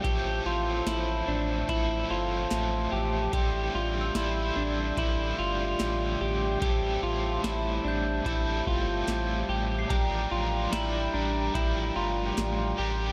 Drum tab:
HH |x-x-x-x-|x-x-x-x-|x-x-x-x-|x-x-x-x-|
SD |--o---o-|--o---o-|--o---o-|--o---o-|
BD |o---o---|o---o---|o---oo--|o---o---|